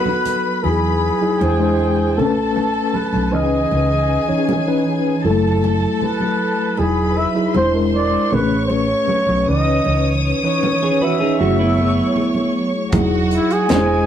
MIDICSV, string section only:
0, 0, Header, 1, 2, 480
1, 0, Start_track
1, 0, Key_signature, 4, "major"
1, 0, Tempo, 768246
1, 399, Time_signature, 4, 2, 24, 8
1, 8787, End_track
2, 0, Start_track
2, 0, Title_t, "String section"
2, 0, Program_c, 0, 48
2, 0, Note_on_c, 0, 71, 85
2, 0, Note_on_c, 0, 83, 92
2, 373, Note_off_c, 0, 71, 0
2, 374, Note_off_c, 0, 83, 0
2, 395, Note_on_c, 0, 71, 59
2, 397, Note_on_c, 0, 83, 72
2, 867, Note_off_c, 0, 71, 0
2, 868, Note_off_c, 0, 83, 0
2, 876, Note_on_c, 0, 79, 69
2, 880, Note_on_c, 0, 68, 56
2, 1347, Note_off_c, 0, 79, 0
2, 1349, Note_off_c, 0, 68, 0
2, 1360, Note_on_c, 0, 81, 69
2, 1362, Note_on_c, 0, 69, 61
2, 2065, Note_off_c, 0, 81, 0
2, 2066, Note_off_c, 0, 69, 0
2, 2080, Note_on_c, 0, 68, 60
2, 2081, Note_on_c, 0, 80, 79
2, 3256, Note_off_c, 0, 68, 0
2, 3256, Note_off_c, 0, 80, 0
2, 3270, Note_on_c, 0, 81, 69
2, 3271, Note_on_c, 0, 69, 66
2, 4216, Note_off_c, 0, 69, 0
2, 4216, Note_off_c, 0, 81, 0
2, 4233, Note_on_c, 0, 71, 66
2, 4237, Note_on_c, 0, 83, 70
2, 4707, Note_off_c, 0, 71, 0
2, 4709, Note_off_c, 0, 83, 0
2, 4718, Note_on_c, 0, 84, 67
2, 4719, Note_on_c, 0, 72, 57
2, 5189, Note_off_c, 0, 84, 0
2, 5190, Note_off_c, 0, 72, 0
2, 5193, Note_on_c, 0, 85, 76
2, 5197, Note_on_c, 0, 73, 59
2, 5902, Note_off_c, 0, 85, 0
2, 5904, Note_off_c, 0, 73, 0
2, 5922, Note_on_c, 0, 73, 72
2, 5922, Note_on_c, 0, 87, 81
2, 7095, Note_off_c, 0, 73, 0
2, 7095, Note_off_c, 0, 87, 0
2, 7120, Note_on_c, 0, 73, 64
2, 7123, Note_on_c, 0, 85, 63
2, 8058, Note_off_c, 0, 73, 0
2, 8059, Note_off_c, 0, 85, 0
2, 8071, Note_on_c, 0, 78, 74
2, 8073, Note_on_c, 0, 66, 71
2, 8543, Note_off_c, 0, 66, 0
2, 8543, Note_off_c, 0, 78, 0
2, 8547, Note_on_c, 0, 56, 70
2, 8548, Note_on_c, 0, 80, 68
2, 8787, Note_off_c, 0, 56, 0
2, 8787, Note_off_c, 0, 80, 0
2, 8787, End_track
0, 0, End_of_file